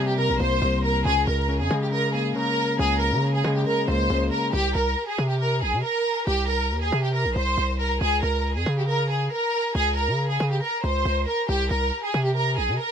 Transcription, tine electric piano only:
Already playing: C3 G3 A#3
0.18 C3
0.40 A#3
0.62 C3
1.05 C#3
1.49 C#3
1.71 G#3
1.92 C#3
2.14 A#3
2.36 C#3
2.79 C#3
3.23 C#3
3.44 G#3
3.66 C#3
3.88 A#3
4.10 C#3

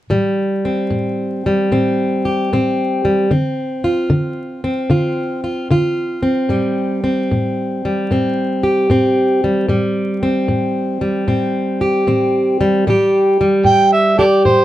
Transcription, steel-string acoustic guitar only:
0.10 A2 G3
0.65 C4
0.90 A2
1.46 G3
1.72 A2 C4
2.25 G4
2.53 A2 C4
3.05 G3
3.31 D3 C4
3.84 F4
4.10 D3
4.64 C4
4.90 D3 F4
5.44 F4
5.71 D3 F4
6.22 C4
6.49 A2 G3
7.04 C4
7.31 A2
7.85 G3
8.11 A2 C4
8.63 G4
8.90 A2 C4
9.44 G3
9.68 A2 G3
10.23 C4
10.48 A2
11.01 G3
11.28 A2 C4
11.81 G4
12.07 A2 C4
12.61 G3
12.87 A2 G3 G4
13.41 G3
13.64 A2
14.19 G4
14.45 A2

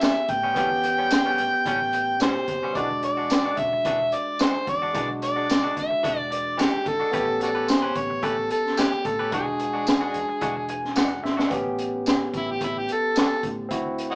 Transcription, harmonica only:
0.04 E5
0.31 G5
2.22 C5
2.76 D5
3.04 D5
3.59 E5
4.15 D5
4.41 C5
4.69 D5
5.24 D5
5.79 E5
6.18 D5
6.33 D5
6.61 G4
6.88 A4
7.43 D4 F#4 A4
7.70 C5
7.97 C#5
8.24 A4
8.52 A4
8.79 G4
9.06 A4
9.34 G#4
12.37 E4
12.51 G4
12.64 E4
12.78 G4
12.92 A4
13.19 D4 F#4 A4
14.11 C#5 D#5 F#5

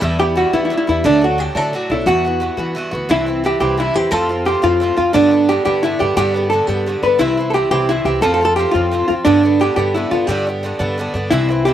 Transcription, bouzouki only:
0.01 G2 G3 B3 E4
0.19 G3 B3 E4
0.36 G2 G3 B3 E4
0.53 G2 G3 B3 E4
0.70 G2 G3 B3 E4
0.87 G3 B3 E4
1.04 A2 F#3 A3 D4
1.22 F#3 A3 D4
1.38 A2 F#3 A3 D4
1.55 A2 F#3 A3 D4
1.73 A2 F#3 A3 D4
1.90 F#3 A3 D4
2.06 G2 E3 B3 F#4
2.25 E3 B3 F#4
2.40 G2 E3 B3 F#4
2.57 G2 E3 B3 F#4
2.75 G2 E3 B3 F#4
2.91 E3 B3 F#4
3.09 G2 E3 C4 E4
3.26 E3 C4 E4
3.44 G2 E3 C4 E4
3.60 G2 E3 C4 E4
3.77 G2 E3 C4 E4
3.94 E3 C4 E4
4.11 A2 F3 C4 F4
4.29 F3 C4 F4
4.45 A2 F3 C4 F4
4.62 A2 F3 C4 F4
4.80 A2 F3 C4 F4
4.97 F3 C4 F4
5.13 G2 D3 B3 D4
5.31 D3 B3 D4
5.49 G2 D3 B3 D4
5.65 G2 D3 B3 D4
5.83 G2 D3 B3 D4
5.99 D3 B3 D4
6.17 G2 D3 B3 D4
6.34 D3 B3 D4
6.51 G2 D3 B3 D4
6.68 G2 D3 B3 D4
6.86 G2 D3 B3 D4
7.03 D3 B3 D4
7.19 G2 E3 C4 E4
7.37 E3 C4 E4
7.53 G2 E3 C4 E4
7.71 G2 E3 C4 E4
7.89 G2 E3 C4 E4
8.06 E3 C4 E4
8.22 A2 F3 C4 F4
8.41 F3 C4 F4
8.57 A2 F3 C4 F4
8.74 A2 F3 C4 F4
8.91 A2 F3 C4 F4
9.08 F3 C4 F4
9.25 G2 D3 B3 D4
9.43 D3 B3 D4
9.60 G2 D3 B3 D4
9.77 G2 D3 B3 D4
9.95 G2 D3 B3 D4
10.11 D3 B3 D4
10.29 G2 D3 B3 D4
10.47 D3 B3 D4
10.63 G2 D3 B3 D4
10.79 G2 D3 B3 D4
10.98 G2 D3 B3 D4
11.14 D3 B3 D4
11.31 G2 E3 C4 E4
11.49 E3 C4 E4
11.66 G2 E3 C4 E4

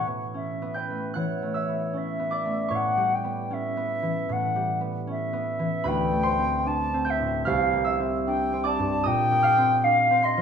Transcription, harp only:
Already playing: A2 E3 A4 B4 C#5 A5 B5 C#6
0.07 B3
0.34 C#4
0.62 B3
0.74 G5 G6
0.90 A3
1.14 E3 F#5 F#6
1.42 A3
1.54 E5 E6
1.69 B3
1.93 C#4
2.19 B3
2.31 D5 D6
2.45 A3
2.68 A2 C#5 C#6
2.97 G3
3.24 B3
3.50 C#4
3.77 B3
4.02 E3
4.29 A2
4.56 G3
4.81 B3
5.07 C#4
5.33 B3
5.59 E3
5.84 D2 B4 B5
6.12 A3
6.23 C5 C6
6.39 C4
6.66 D4
6.94 C4
7.05 G5 G6
7.20 A2
7.45 C2 F5 F6
7.73 A#3
7.85 E5 E6
8.00 C4
8.28 D4
8.53 C4
8.64 D5 D6
8.79 G2
9.04 A#2 D#5 D#6
9.32 A#3
9.43 F5 F6
9.58 C4
9.84 D4
10.10 C4
10.22 C6 C7
10.37 F3

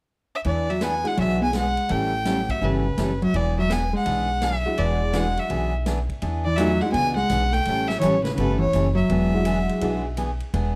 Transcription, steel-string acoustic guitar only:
0.44 E3 B3 D4 G#4
0.81 E3 B3 D4 G#4
1.17 E3 B3 D4 G#4
1.53 E3 B3 D4 G#4
1.89 E3 G3 C#4 E4 A4
2.25 E3 G3 C#4 E4 A4
2.62 E3 G3 C#4 E4 A4
2.98 E3 G3 C#4 E4 A4
3.35 E3 B3 D4 G#4
3.70 E3 B3 D4 G#4
4.06 E3 B3 D4 G#4
4.42 E3 B3 D4 G#4
4.78 E3 B3 D4 G#4
5.13 E3 B3 D4 G#4
5.50 E3 B3 D4 G#4
5.86 E3 B3 D4 G#4
6.22 E3 B3 D4 G#4
6.59 E3 B3 D4 G#4
6.94 E3 B3 D4 G#4
7.31 E3 B3 D4 G#4
7.68 E3 G3 C#4 E4 A4
8.02 E3 G3 C#4 E4 A4
8.39 E3 G3 C#4 E4 A4
8.74 E3 G3 C#4 E4 A4
9.10 E3 B3 D4 G#4
9.46 E3 B3 D4 G#4
9.82 E3 B3 D4 G#4
10.17 E3 B3 D4 G#4
10.54 E3 B3 D4 G#4

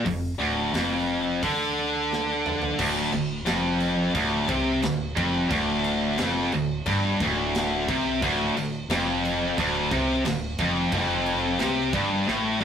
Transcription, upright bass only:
0.06 F1
0.40 D1
0.74 F1
1.43 D2
2.78 D1
3.13 D1
3.48 F1
4.15 D1
4.49 C2
4.84 D1
5.17 F1
5.51 D1
6.18 F1
6.53 D1
6.87 G1
7.20 D1
7.88 C2
8.22 D1
8.56 D1
8.89 F1
9.58 D1
9.91 C2
10.24 D1
10.59 F1
10.92 F1
11.59 C2
11.93 G1
12.27 A1
12.61 D1

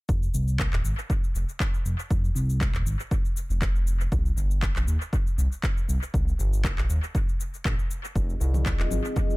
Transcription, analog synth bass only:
0.09 F1
0.34 C2
0.73 D#1
0.84 G#1
1.35 F1
1.85 F1
2.11 F1
2.35 C2
2.74 D#1
2.85 G#1
3.50 F1
4.12 C2
4.37 G1
4.76 A#1
4.87 D#2
5.38 C2
5.88 C2
6.14 C2
6.39 G1
6.78 A#1
6.89 D#2
7.65 A#1
8.16 F1
8.40 C2
8.79 D#1
8.91 G#1

